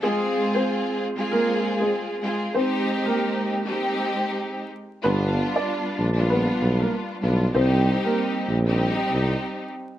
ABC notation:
X:1
M:4/4
L:1/16
Q:"Swing 16ths" 1/4=96
K:Fdor
V:1 name="Upright piano"
[A,A]3 [Cc]4- [Cc] [B,B]3 [A,A] z4 | [Cc]3 [B,B]8- [B,B] z4 | [=B,=B]3 [Dd]4- [Dd] [B,B]3 [_B,_B] z4 | [Cc]3 [B,B]8- [B,B] z4 |]
V:2 name="String section"
[A,CFA]6 z [A,CFA]6 z [A,CFA]2 | [A,CEG]6 z [A,CEG]6 z3 | [G,=B,DF]6 z [G,B,DF]6 z [G,B,DF]2 | [G,CEG]6 z [G,CEG]6 z3 |]
V:3 name="Tuba" clef=bass
z16 | z16 | G,,,3 z3 B,,,4 =B,,,2 z2 B,,,2 | C,,3 z3 B,,,4 C,,2 z4 |]